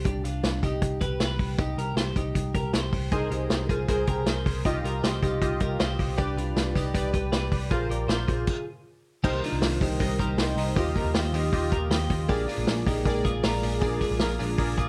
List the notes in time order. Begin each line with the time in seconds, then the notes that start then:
0.05 C2 D4 G4, kick, closed hi-hat
0.24 C2 D4 F4, closed hi-hat
0.43 C2, snare, closed hi-hat
0.63 C2 D#4 G4, kick, closed hi-hat
0.82 C2, kick, closed hi-hat
1.01 C2 G4 B4, kick, closed hi-hat
1.20 C2 G4 B4, snare, closed hi-hat
1.39 C2, kick, open hi-hat
1.58 C2 D#4 G4, kick, closed hi-hat
1.77 C2 G4 A#4, closed hi-hat
1.95 C2 G4 C5, snare, closed hi-hat
2.16 C2 D#4 G4, kick, closed hi-hat
2.35 C2, kick, closed hi-hat
2.54 C2 G4 A#4, kick, closed hi-hat
2.73 C2 G4 C5, snare, closed hi-hat
2.92 C2, kick, open hi-hat
3.11 C2 D#4 G#4 A#4 C5, kick, closed hi-hat
3.31 C2 D#4 G4 G#4 A#4 C5, closed hi-hat
3.50 C2 G#4 A#4 C5, snare, closed hi-hat
3.69 C2 F4 G#4 A#4 C5, kick, closed hi-hat
3.88 C2 G#4 A#4 C5, kick, closed hi-hat
4.07 C2 G4 G#4 A#4 C5, kick, closed hi-hat
4.26 C2 G#4 A#4 C5, snare, closed hi-hat
4.46 C2 G#4 A#4 C5, kick, open hi-hat
4.65 C2 D#4 F4 G4 D#5, kick, closed hi-hat
4.84 C2 F4 G4 A#4 D#5, closed hi-hat
5.03 C2 F4 G4 C5 D#5, snare, closed hi-hat
5.22 C2 D#4 F4 G4 D#5, kick, closed hi-hat
5.42 C2 F4 G4 D#5, kick, closed hi-hat
5.60 C2 F4 G4 A#4 D#5, kick, closed hi-hat
5.79 C2 F4 G4 C5 D#5, snare, closed hi-hat
5.99 C2 F4 G4 D#5, kick, open hi-hat
6.17 C2 D4 G4 B4 D5, kick, closed hi-hat
6.36 C2 D4 F4 G4 B4 D5, closed hi-hat
6.56 C2 G4 B4 D5, snare, closed hi-hat
6.75 C2 D#4 G4 B4 D5, kick, closed hi-hat
6.94 C2 G4 B4 D5, kick, closed hi-hat
7.13 C2 G4 B4 D5, kick, closed hi-hat
7.32 C2 G4 B4 D5, snare, closed hi-hat
7.52 C2 G4 B4 D5, kick, open hi-hat
7.71 A#1 F4 G#4 A#4 C5, kick, closed hi-hat
7.89 A#1 F4 G4 A#4 D5, closed hi-hat
8.08 A#1 F4 A#4 C5, snare, closed hi-hat
8.28 A#1 F4 G#4 A#4 C5, kick, closed hi-hat
8.47 kick, crash
9.23 C2 C3 D#3 G3 A#3 D#4 G4 A#4 C5, kick, crash
9.43 D4 D#4 F4 A#4 C5, hi-hat pedal, open hi-hat
9.53 C2
9.61 C2 D#4 A#4 C5, snare, hi-hat pedal, open hi-hat
9.81 C2 D#4 G4 A#4 C5, kick, hi-hat pedal, open hi-hat
9.99 C2 D#4 A#4 D#5, kick, hi-hat pedal, open hi-hat
10.18 C2 D#4 G4 A#4 C5, kick, hi-hat pedal, open hi-hat
10.37 C2 D#4 G4 A#4 C5, snare, hi-hat pedal, open hi-hat
10.56 C2 D#4 A#4 D#5, hi-hat pedal, open hi-hat
10.76 D#2 D#3 D#4 F4 G4 D#5, kick, hi-hat pedal, open hi-hat
10.96 F4 G4 A#4 D#5, kick, hi-hat pedal, open hi-hat
11.05 D#2
11.14 D#2 F4 G4 C5 D#5, snare, hi-hat pedal, open hi-hat
11.33 D#2 D#4 F4 G4 D#5, hi-hat pedal, open hi-hat
11.52 D#2 F4 G4 D#5, kick, hi-hat pedal, open hi-hat
11.72 D#2 F4 G4 A#4 D#5, kick, hi-hat pedal, open hi-hat
11.90 D#2 F4 G4 C5 D#5, snare, hi-hat pedal, open hi-hat
12.10 D#2 F4 G4 D#5, kick, hi-hat pedal, open hi-hat
12.28 A#1 G#3 D4 G4 G#4 A#4 D5, kick, hi-hat pedal, open hi-hat
12.48 D4 F4 G#4 A#4 D5, hi-hat pedal, open hi-hat
12.58 A#1
12.67 A#1 G#4 A#4 D5, snare, hi-hat pedal, open hi-hat
12.86 A#1 D#4 G4 G#4 A#4 D5, kick, hi-hat pedal, open hi-hat
13.05 A#1 G#4 A#4 D5, kick, hi-hat pedal, open hi-hat
13.24 A#1 F4 G#4 A#4 D5, kick, hi-hat pedal, open hi-hat
13.43 A#1 F4 G#4 A#4 D5, snare, hi-hat pedal, open hi-hat
13.63 A#1 G#4 A#4 D5, hi-hat pedal, open hi-hat
13.81 A#1 D4 F4 G#4 A#4 D5, kick, hi-hat pedal, open hi-hat
14.00 F4 G#4 A#4 D5, kick, hi-hat pedal, open hi-hat
14.11 A#1
14.19 A#1 F4 G#4 A#4 D5, snare, hi-hat pedal, open hi-hat
14.39 A#1 D4 F4 G#4 A#4 D5, hi-hat pedal, open hi-hat
14.58 A#1 G#4 A#4 D5, kick, hi-hat pedal, open hi-hat
14.77 A#1 F4 G#4 A#4 D5, kick, hi-hat pedal, open hi-hat